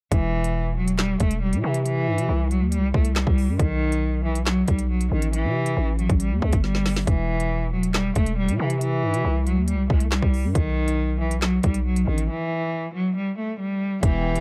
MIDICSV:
0, 0, Header, 1, 5, 480
1, 0, Start_track
1, 0, Key_signature, 1, "minor"
1, 0, Tempo, 434783
1, 129, Time_signature, 4, 2, 24, 8
1, 15901, End_track
2, 0, Start_track
2, 0, Title_t, "String section"
2, 0, Program_c, 0, 48
2, 15488, Note_on_c, 0, 52, 87
2, 15488, Note_on_c, 0, 59, 79
2, 15488, Note_on_c, 0, 67, 96
2, 15901, Note_off_c, 0, 52, 0
2, 15901, Note_off_c, 0, 59, 0
2, 15901, Note_off_c, 0, 67, 0
2, 15901, End_track
3, 0, Start_track
3, 0, Title_t, "Cello"
3, 0, Program_c, 1, 42
3, 129, Note_on_c, 1, 52, 102
3, 806, Note_off_c, 1, 52, 0
3, 849, Note_on_c, 1, 54, 77
3, 1067, Note_off_c, 1, 54, 0
3, 1089, Note_on_c, 1, 55, 92
3, 1307, Note_off_c, 1, 55, 0
3, 1329, Note_on_c, 1, 57, 81
3, 1547, Note_off_c, 1, 57, 0
3, 1571, Note_on_c, 1, 55, 89
3, 1788, Note_off_c, 1, 55, 0
3, 1809, Note_on_c, 1, 52, 84
3, 2027, Note_off_c, 1, 52, 0
3, 2048, Note_on_c, 1, 52, 116
3, 2725, Note_off_c, 1, 52, 0
3, 2770, Note_on_c, 1, 54, 85
3, 2988, Note_off_c, 1, 54, 0
3, 3007, Note_on_c, 1, 55, 95
3, 3226, Note_off_c, 1, 55, 0
3, 3248, Note_on_c, 1, 57, 74
3, 3466, Note_off_c, 1, 57, 0
3, 3487, Note_on_c, 1, 55, 85
3, 3939, Note_off_c, 1, 55, 0
3, 3970, Note_on_c, 1, 51, 104
3, 4646, Note_off_c, 1, 51, 0
3, 4688, Note_on_c, 1, 52, 75
3, 4907, Note_off_c, 1, 52, 0
3, 4928, Note_on_c, 1, 54, 89
3, 5147, Note_off_c, 1, 54, 0
3, 5168, Note_on_c, 1, 55, 77
3, 5387, Note_off_c, 1, 55, 0
3, 5410, Note_on_c, 1, 54, 89
3, 5628, Note_off_c, 1, 54, 0
3, 5648, Note_on_c, 1, 51, 83
3, 5867, Note_off_c, 1, 51, 0
3, 5890, Note_on_c, 1, 52, 105
3, 6566, Note_off_c, 1, 52, 0
3, 6611, Note_on_c, 1, 54, 85
3, 6828, Note_off_c, 1, 54, 0
3, 6849, Note_on_c, 1, 55, 82
3, 7067, Note_off_c, 1, 55, 0
3, 7090, Note_on_c, 1, 57, 71
3, 7307, Note_off_c, 1, 57, 0
3, 7331, Note_on_c, 1, 55, 86
3, 7781, Note_off_c, 1, 55, 0
3, 7810, Note_on_c, 1, 52, 99
3, 8486, Note_off_c, 1, 52, 0
3, 8530, Note_on_c, 1, 54, 78
3, 8748, Note_off_c, 1, 54, 0
3, 8768, Note_on_c, 1, 55, 89
3, 8987, Note_off_c, 1, 55, 0
3, 9008, Note_on_c, 1, 57, 84
3, 9227, Note_off_c, 1, 57, 0
3, 9250, Note_on_c, 1, 55, 95
3, 9468, Note_off_c, 1, 55, 0
3, 9488, Note_on_c, 1, 52, 87
3, 9706, Note_off_c, 1, 52, 0
3, 9728, Note_on_c, 1, 52, 122
3, 10405, Note_off_c, 1, 52, 0
3, 10450, Note_on_c, 1, 54, 87
3, 10668, Note_off_c, 1, 54, 0
3, 10687, Note_on_c, 1, 55, 92
3, 10906, Note_off_c, 1, 55, 0
3, 10929, Note_on_c, 1, 57, 72
3, 11147, Note_off_c, 1, 57, 0
3, 11168, Note_on_c, 1, 55, 85
3, 11620, Note_off_c, 1, 55, 0
3, 11650, Note_on_c, 1, 51, 104
3, 12326, Note_off_c, 1, 51, 0
3, 12369, Note_on_c, 1, 52, 79
3, 12587, Note_off_c, 1, 52, 0
3, 12609, Note_on_c, 1, 54, 89
3, 12827, Note_off_c, 1, 54, 0
3, 12849, Note_on_c, 1, 55, 78
3, 13067, Note_off_c, 1, 55, 0
3, 13090, Note_on_c, 1, 54, 93
3, 13308, Note_off_c, 1, 54, 0
3, 13329, Note_on_c, 1, 51, 84
3, 13547, Note_off_c, 1, 51, 0
3, 13570, Note_on_c, 1, 52, 103
3, 14246, Note_off_c, 1, 52, 0
3, 14289, Note_on_c, 1, 54, 85
3, 14507, Note_off_c, 1, 54, 0
3, 14528, Note_on_c, 1, 55, 81
3, 14746, Note_off_c, 1, 55, 0
3, 14769, Note_on_c, 1, 57, 71
3, 14987, Note_off_c, 1, 57, 0
3, 15009, Note_on_c, 1, 55, 81
3, 15460, Note_off_c, 1, 55, 0
3, 15489, Note_on_c, 1, 52, 104
3, 15901, Note_off_c, 1, 52, 0
3, 15901, End_track
4, 0, Start_track
4, 0, Title_t, "808-style bass"
4, 0, Program_c, 2, 38
4, 129, Note_on_c, 2, 28, 112
4, 1285, Note_off_c, 2, 28, 0
4, 1329, Note_on_c, 2, 28, 111
4, 1689, Note_on_c, 2, 47, 99
4, 1705, Note_off_c, 2, 28, 0
4, 1803, Note_off_c, 2, 47, 0
4, 1808, Note_on_c, 2, 48, 103
4, 2288, Note_on_c, 2, 43, 98
4, 2305, Note_off_c, 2, 48, 0
4, 2408, Note_on_c, 2, 48, 101
4, 2425, Note_off_c, 2, 43, 0
4, 2523, Note_off_c, 2, 48, 0
4, 2528, Note_on_c, 2, 36, 108
4, 2888, Note_on_c, 2, 39, 100
4, 2905, Note_off_c, 2, 36, 0
4, 3069, Note_on_c, 2, 36, 99
4, 3085, Note_off_c, 2, 39, 0
4, 3240, Note_off_c, 2, 36, 0
4, 3249, Note_on_c, 2, 36, 106
4, 3594, Note_off_c, 2, 36, 0
4, 3608, Note_on_c, 2, 36, 108
4, 3848, Note_on_c, 2, 43, 97
4, 3865, Note_off_c, 2, 36, 0
4, 3963, Note_off_c, 2, 43, 0
4, 3969, Note_on_c, 2, 35, 106
4, 5124, Note_off_c, 2, 35, 0
4, 5169, Note_on_c, 2, 35, 107
4, 5630, Note_off_c, 2, 35, 0
4, 5649, Note_on_c, 2, 33, 104
4, 6009, Note_on_c, 2, 48, 95
4, 6025, Note_off_c, 2, 33, 0
4, 6351, Note_off_c, 2, 48, 0
4, 6369, Note_on_c, 2, 33, 112
4, 6714, Note_off_c, 2, 33, 0
4, 6729, Note_on_c, 2, 33, 110
4, 6970, Note_on_c, 2, 40, 99
4, 6986, Note_off_c, 2, 33, 0
4, 7083, Note_off_c, 2, 40, 0
4, 7090, Note_on_c, 2, 40, 106
4, 7204, Note_off_c, 2, 40, 0
4, 7209, Note_on_c, 2, 31, 99
4, 7785, Note_off_c, 2, 31, 0
4, 7809, Note_on_c, 2, 28, 108
4, 8965, Note_off_c, 2, 28, 0
4, 9009, Note_on_c, 2, 28, 108
4, 9369, Note_on_c, 2, 47, 99
4, 9385, Note_off_c, 2, 28, 0
4, 9483, Note_off_c, 2, 47, 0
4, 9489, Note_on_c, 2, 48, 107
4, 9968, Note_on_c, 2, 43, 98
4, 9985, Note_off_c, 2, 48, 0
4, 10088, Note_on_c, 2, 48, 101
4, 10105, Note_off_c, 2, 43, 0
4, 10203, Note_off_c, 2, 48, 0
4, 10209, Note_on_c, 2, 36, 112
4, 10569, Note_on_c, 2, 39, 100
4, 10585, Note_off_c, 2, 36, 0
4, 10749, Note_on_c, 2, 36, 97
4, 10765, Note_off_c, 2, 39, 0
4, 10920, Note_off_c, 2, 36, 0
4, 10929, Note_on_c, 2, 36, 105
4, 11274, Note_off_c, 2, 36, 0
4, 11288, Note_on_c, 2, 36, 103
4, 11529, Note_on_c, 2, 43, 99
4, 11545, Note_off_c, 2, 36, 0
4, 11643, Note_off_c, 2, 43, 0
4, 11649, Note_on_c, 2, 35, 107
4, 12805, Note_off_c, 2, 35, 0
4, 12849, Note_on_c, 2, 35, 105
4, 13310, Note_off_c, 2, 35, 0
4, 13329, Note_on_c, 2, 33, 101
4, 13569, Note_off_c, 2, 33, 0
4, 15489, Note_on_c, 2, 28, 108
4, 15901, Note_off_c, 2, 28, 0
4, 15901, End_track
5, 0, Start_track
5, 0, Title_t, "Drums"
5, 128, Note_on_c, 9, 42, 83
5, 129, Note_on_c, 9, 36, 116
5, 239, Note_off_c, 9, 36, 0
5, 239, Note_off_c, 9, 42, 0
5, 489, Note_on_c, 9, 42, 69
5, 599, Note_off_c, 9, 42, 0
5, 967, Note_on_c, 9, 42, 84
5, 1077, Note_off_c, 9, 42, 0
5, 1089, Note_on_c, 9, 38, 114
5, 1089, Note_on_c, 9, 39, 90
5, 1199, Note_off_c, 9, 39, 0
5, 1200, Note_off_c, 9, 38, 0
5, 1322, Note_on_c, 9, 42, 81
5, 1329, Note_on_c, 9, 36, 97
5, 1433, Note_off_c, 9, 42, 0
5, 1439, Note_off_c, 9, 36, 0
5, 1443, Note_on_c, 9, 42, 71
5, 1554, Note_off_c, 9, 42, 0
5, 1687, Note_on_c, 9, 42, 74
5, 1798, Note_off_c, 9, 42, 0
5, 1924, Note_on_c, 9, 42, 81
5, 2035, Note_off_c, 9, 42, 0
5, 2048, Note_on_c, 9, 42, 83
5, 2159, Note_off_c, 9, 42, 0
5, 2409, Note_on_c, 9, 42, 76
5, 2519, Note_off_c, 9, 42, 0
5, 2770, Note_on_c, 9, 42, 53
5, 2881, Note_off_c, 9, 42, 0
5, 3002, Note_on_c, 9, 42, 83
5, 3113, Note_off_c, 9, 42, 0
5, 3249, Note_on_c, 9, 36, 97
5, 3359, Note_off_c, 9, 36, 0
5, 3363, Note_on_c, 9, 42, 71
5, 3474, Note_off_c, 9, 42, 0
5, 3488, Note_on_c, 9, 39, 94
5, 3489, Note_on_c, 9, 38, 121
5, 3598, Note_off_c, 9, 39, 0
5, 3599, Note_off_c, 9, 38, 0
5, 3608, Note_on_c, 9, 36, 99
5, 3718, Note_off_c, 9, 36, 0
5, 3732, Note_on_c, 9, 46, 55
5, 3842, Note_off_c, 9, 46, 0
5, 3969, Note_on_c, 9, 36, 115
5, 3969, Note_on_c, 9, 42, 83
5, 4079, Note_off_c, 9, 36, 0
5, 4079, Note_off_c, 9, 42, 0
5, 4328, Note_on_c, 9, 42, 69
5, 4439, Note_off_c, 9, 42, 0
5, 4807, Note_on_c, 9, 42, 81
5, 4917, Note_off_c, 9, 42, 0
5, 4929, Note_on_c, 9, 39, 91
5, 4930, Note_on_c, 9, 38, 114
5, 5039, Note_off_c, 9, 39, 0
5, 5040, Note_off_c, 9, 38, 0
5, 5163, Note_on_c, 9, 42, 81
5, 5169, Note_on_c, 9, 36, 99
5, 5273, Note_off_c, 9, 42, 0
5, 5280, Note_off_c, 9, 36, 0
5, 5283, Note_on_c, 9, 42, 74
5, 5394, Note_off_c, 9, 42, 0
5, 5527, Note_on_c, 9, 42, 75
5, 5638, Note_off_c, 9, 42, 0
5, 5764, Note_on_c, 9, 42, 83
5, 5875, Note_off_c, 9, 42, 0
5, 5889, Note_on_c, 9, 42, 84
5, 5999, Note_off_c, 9, 42, 0
5, 6249, Note_on_c, 9, 42, 73
5, 6359, Note_off_c, 9, 42, 0
5, 6609, Note_on_c, 9, 42, 33
5, 6720, Note_off_c, 9, 42, 0
5, 6729, Note_on_c, 9, 36, 103
5, 6729, Note_on_c, 9, 42, 56
5, 6839, Note_off_c, 9, 36, 0
5, 6840, Note_off_c, 9, 42, 0
5, 6843, Note_on_c, 9, 42, 86
5, 6954, Note_off_c, 9, 42, 0
5, 7090, Note_on_c, 9, 36, 98
5, 7200, Note_off_c, 9, 36, 0
5, 7204, Note_on_c, 9, 42, 72
5, 7209, Note_on_c, 9, 36, 95
5, 7315, Note_off_c, 9, 42, 0
5, 7320, Note_off_c, 9, 36, 0
5, 7329, Note_on_c, 9, 38, 59
5, 7440, Note_off_c, 9, 38, 0
5, 7449, Note_on_c, 9, 38, 66
5, 7560, Note_off_c, 9, 38, 0
5, 7569, Note_on_c, 9, 38, 89
5, 7572, Note_on_c, 9, 46, 54
5, 7680, Note_off_c, 9, 38, 0
5, 7683, Note_off_c, 9, 46, 0
5, 7689, Note_on_c, 9, 38, 93
5, 7800, Note_off_c, 9, 38, 0
5, 7809, Note_on_c, 9, 36, 117
5, 7809, Note_on_c, 9, 42, 85
5, 7920, Note_off_c, 9, 36, 0
5, 7920, Note_off_c, 9, 42, 0
5, 8169, Note_on_c, 9, 42, 70
5, 8279, Note_off_c, 9, 42, 0
5, 8647, Note_on_c, 9, 42, 86
5, 8757, Note_off_c, 9, 42, 0
5, 8769, Note_on_c, 9, 39, 91
5, 8770, Note_on_c, 9, 38, 114
5, 8879, Note_off_c, 9, 39, 0
5, 8880, Note_off_c, 9, 38, 0
5, 9003, Note_on_c, 9, 42, 80
5, 9009, Note_on_c, 9, 36, 98
5, 9113, Note_off_c, 9, 42, 0
5, 9120, Note_off_c, 9, 36, 0
5, 9123, Note_on_c, 9, 42, 74
5, 9234, Note_off_c, 9, 42, 0
5, 9367, Note_on_c, 9, 42, 76
5, 9478, Note_off_c, 9, 42, 0
5, 9604, Note_on_c, 9, 42, 83
5, 9715, Note_off_c, 9, 42, 0
5, 9729, Note_on_c, 9, 42, 81
5, 9839, Note_off_c, 9, 42, 0
5, 10089, Note_on_c, 9, 42, 71
5, 10199, Note_off_c, 9, 42, 0
5, 10450, Note_on_c, 9, 42, 53
5, 10561, Note_off_c, 9, 42, 0
5, 10683, Note_on_c, 9, 42, 85
5, 10794, Note_off_c, 9, 42, 0
5, 10929, Note_on_c, 9, 36, 98
5, 11040, Note_off_c, 9, 36, 0
5, 11044, Note_on_c, 9, 42, 73
5, 11154, Note_off_c, 9, 42, 0
5, 11169, Note_on_c, 9, 39, 91
5, 11170, Note_on_c, 9, 38, 119
5, 11279, Note_off_c, 9, 39, 0
5, 11280, Note_off_c, 9, 38, 0
5, 11288, Note_on_c, 9, 36, 95
5, 11399, Note_off_c, 9, 36, 0
5, 11412, Note_on_c, 9, 46, 54
5, 11522, Note_off_c, 9, 46, 0
5, 11649, Note_on_c, 9, 36, 115
5, 11649, Note_on_c, 9, 42, 84
5, 11759, Note_off_c, 9, 42, 0
5, 11760, Note_off_c, 9, 36, 0
5, 12009, Note_on_c, 9, 42, 68
5, 12119, Note_off_c, 9, 42, 0
5, 12487, Note_on_c, 9, 42, 84
5, 12598, Note_off_c, 9, 42, 0
5, 12609, Note_on_c, 9, 39, 89
5, 12610, Note_on_c, 9, 38, 116
5, 12719, Note_off_c, 9, 39, 0
5, 12720, Note_off_c, 9, 38, 0
5, 12843, Note_on_c, 9, 42, 83
5, 12849, Note_on_c, 9, 36, 98
5, 12953, Note_off_c, 9, 42, 0
5, 12960, Note_off_c, 9, 36, 0
5, 12964, Note_on_c, 9, 42, 74
5, 13074, Note_off_c, 9, 42, 0
5, 13207, Note_on_c, 9, 42, 75
5, 13318, Note_off_c, 9, 42, 0
5, 13445, Note_on_c, 9, 42, 83
5, 13555, Note_off_c, 9, 42, 0
5, 15488, Note_on_c, 9, 42, 86
5, 15489, Note_on_c, 9, 36, 114
5, 15599, Note_off_c, 9, 36, 0
5, 15599, Note_off_c, 9, 42, 0
5, 15848, Note_on_c, 9, 42, 70
5, 15901, Note_off_c, 9, 42, 0
5, 15901, End_track
0, 0, End_of_file